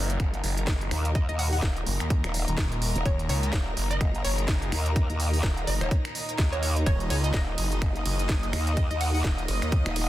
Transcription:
Already playing: F#1 A#2 D#3 A#3 D#4 A#4 D#5 A#5, downlifter
0.10 closed hi-hat
0.20 F#1, finger snap, kick, closed hi-hat
0.34 closed hi-hat
0.44 F#1, open hi-hat
0.57 closed hi-hat
0.67 kick, snare, closed hi-hat
0.81 closed hi-hat
0.91 D#2, finger snap, open hi-hat
1.05 closed hi-hat
1.15 D#5, kick, closed hi-hat
1.29 D#2 D#5, closed hi-hat
1.39 F#5, open hi-hat
1.53 F#5, open hi-hat
1.62 D#1, kick, snare
1.77 closed hi-hat
1.86 F#1, open hi-hat
2.00 D#2, finger snap, closed hi-hat
2.10 kick, closed hi-hat
2.24 D#1, finger snap, closed hi-hat
2.34 open hi-hat
2.48 D#1, closed hi-hat
2.58 kick, snare, closed hi-hat
2.72 closed hi-hat
2.82 open hi-hat
2.96 D#1, closed hi-hat
3.05 D#1 C#5, kick, closed hi-hat
3.19 closed hi-hat
3.29 C#2 C#5, open hi-hat
3.43 closed hi-hat
3.53 D#1, kick, snare, closed hi-hat
3.77 F#1, open hi-hat
3.91 D#5, closed hi-hat
4.01 F#1, finger snap, kick, closed hi-hat
4.15 closed hi-hat
4.24 F#1 C#5, open hi-hat
4.38 closed hi-hat
4.48 kick, snare, closed hi-hat
4.62 closed hi-hat
4.72 D#2, finger snap, open hi-hat
4.86 closed hi-hat
4.96 kick, closed hi-hat
5.10 D#2, closed hi-hat
5.20 open hi-hat
5.33 open hi-hat
5.43 D#1, kick, snare
5.57 closed hi-hat
5.67 F#1 D#5, open hi-hat
5.81 D#1 C#5, finger snap, closed hi-hat
5.91 kick, closed hi-hat
6.05 finger snap, closed hi-hat
6.15 open hi-hat
6.29 closed hi-hat
6.38 D#2, kick, snare, closed hi-hat
6.52 C#5, closed hi-hat
6.62 C#5, open hi-hat
6.76 closed hi-hat
6.86 D#1 C#5 D#5, kick, closed hi-hat, ride
7.00 closed hi-hat
7.10 C#2 C#5, open hi-hat, ride
7.24 D#5, closed hi-hat
7.34 D#1 D#5, kick, snare, closed hi-hat, ride
7.39 D#6
7.58 F#1, open hi-hat, ride
7.72 closed hi-hat
7.82 F#1, finger snap, kick, closed hi-hat, ride
7.96 closed hi-hat
8.06 F#1, open hi-hat, ride
8.19 closed hi-hat
8.29 kick, snare, closed hi-hat, ride
8.43 closed hi-hat
8.53 D#2, finger snap, open hi-hat, ride
8.67 closed hi-hat
8.77 D#5, kick, closed hi-hat, ride
8.91 D#2 D#5, closed hi-hat
9.01 F#5, open hi-hat, ride
9.14 F#5, open hi-hat
9.24 D#1, kick, snare, closed hi-hat, ride
9.38 closed hi-hat
9.48 F#1, open hi-hat, ride
9.62 D#2, finger snap, closed hi-hat
9.72 kick, closed hi-hat, ride
9.86 D#1, finger snap, closed hi-hat
9.96 open hi-hat, ride

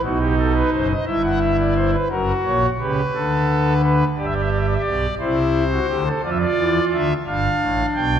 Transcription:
0.03 B1 B2 D#4 F#4
0.20 G4
0.38 A4
0.55 B4
0.72 F#1 F#2 C5
0.90 D#5
1.06 G1 G2 E4 E5
1.24 F#5
1.42 E5
1.59 D5
1.76 C5
1.93 B4
2.10 F#1 F#2 F#4 A#4
2.45 A#1 A#2 C#5
2.80 C#2 C#3 G4 B4
3.14 D2 D3 A4
3.83 B4
4.18 G1 G2 G4 D5
4.25 E5
4.33 D5
4.41 E5
4.50 D5
4.58 E5
4.66 D5
4.73 E5
4.81 D5
4.85 B1 B2
5.20 C2 C3 E4 C5
5.72 F#4
5.89 D2 D3 G4
6.06 A4
6.23 F2 F3 F4 D5
6.31 E5
6.38 D5
6.58 E2 E3
6.92 D2 D3 E5
7.26 G1 G2 D4 F5
7.60 A1 A2
7.96 B1 B2 G5

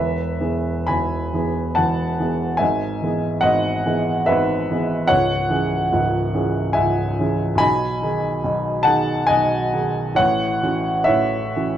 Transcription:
Already playing: E1 E2 B4 E5
0.40 E3 B3 G#4
0.87 E1 E2 G#5 B5
1.33 E3 B3 G#4
1.75 E1 E2 F#5 A5
2.20 E3 B3 G#4
2.57 G#1 G#2 E5 G#5
3.02 E3 B3 G#4
3.41 G#1 G#2 D#5 F#5
3.86 E3 B3 G#4
4.26 G#1 G#2 B4 E5
4.70 E3 B3 G#4
5.07 C#1 C#2 C#5 F#5
5.50 E3 C#4 G#4
5.92 C#1 C#2
6.34 E3 C#4 G#4
6.73 C#1 C#2 E5 G#5
7.19 E3 C#4 G#4
7.55 B1 G#5 B5
7.60 B2
8.02 D#3 D#4 G#4
8.44 B1 B2
8.83 D#3 D#4 G#4 F#5 A5
9.27 B1 B2 D#5 G#5
9.73 D#3 D#4 G#4
10.15 A2 C#5 F#5
10.19 A1
10.63 E3 C#4 F#4
11.04 A1 A2 C#5 E5
11.56 E3 C#4 F#4

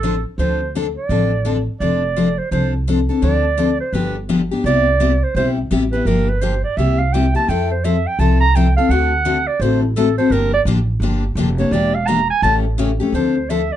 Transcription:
Already playing: A1 A4
0.03 D3 F3 C4 D4 A4
0.38 D2 D3 F3 C4 D4 A4 C5
0.75 D3 F3 C4 D4 A4
0.96 D5
1.09 A1 D3 F3 C4 D4 A4
1.45 D3 F3 C4 D4 A4
1.80 F1 F3 C4 D4 A4 D5
2.16 F3 C4 D4 A4
2.38 C5
2.51 C2 F3 C4 D4 A4 C5
2.88 F3 C4 D4 A4
3.09 C4 D4 A4
3.22 D2 D3 F3 C4 D4 A4 D5
3.57 D3 F3 C4 D4 A4
3.80 C5
3.93 G1 D3 F3 B3 D4 G4 B4
4.29 D3 F3 B3 D4 G4
4.51 B3 D4 G4
4.64 C2 C3 G3 B3 E4 G4 D5
5.00 C3 G3 B3 E4 G4
5.23 C5
5.35 B1 C3 G3 B3 E4 G4 C5
5.71 A1 C3 G3 B3 E4 G4
5.92 B3 E4 G4 B4
6.05 G1 D3 F3 A#3 D4 G4 A#4
6.29 B4
6.41 D3 F3 A#3 D4 G4 C5
6.64 D5
6.77 C2 C3 G3 A#3 E4 G4 E5
6.98 F5
7.13 C3 G3 A#3 E4 G4 G5
7.35 A#3 E4 G4 A5
7.48 F2 F3 C4 E4 A4 G5
7.71 C5
7.84 F3 C4 E4 A4 E5
8.07 G5
8.19 C2 F3 C4 E4 A4 A5
8.40 A#5
8.55 F3 C4 E4 A4 G5
8.76 C4 E4 A4 F5
8.89 D2 D3 A3 C4 F#4 A4 F#5
9.25 D3 A3 C4 F#4 A4
9.47 D5
9.60 A1 D3 A3 C4 F#4 A4 C5
9.83 E4
9.96 D3 A3 C4 F#4 A4
10.18 C4 F#4 A4 C5
10.30 G1 D3 F3 A#3 D4 G4 A#4
10.54 D5
10.65 A1 D3 F3 A#3 D4 G4
11.00 G1 D3 F3 A#3 D4 G4
11.35 F1 D3 F3 A#3 D4 G4
11.58 A#3 D4 G4 C#5
11.71 E1 E3 A#3 D4 G4 D5
11.94 F5
12.07 E3 A#3 D4 G4 A#5
12.30 G#5
12.42 A1 C#3 E3 A3 C#4 G4 A5
12.78 C#3 E3 A3 C#4 G4
13.00 A3 C#4 G4
13.12 D2 D3 F3 C4 D4 A4 C5
13.50 D3 F3 C4 D4 A4 E5
13.72 D5

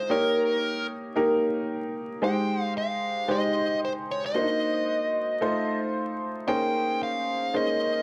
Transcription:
Already playing: G#3 D#4 F4 C5
0.09 A#3 D#4 G4 A#4 C#5
1.16 A#3 D#4 G4 A#4
2.22 G#3 D#4 G4 C5 G5
2.78 F5
3.28 G#3 D#4 G4 C5 D#5
3.85 C5
4.11 C#5
4.26 D#5
4.34 A#3 D4 F#4 C5
4.41 D#4
5.41 A3 D#4 F4 C5
6.48 A#3 C#4 D#4 G#4 C5 G5
7.03 F5
7.53 A#3 C#4 D#4 G#4 C5 D#5

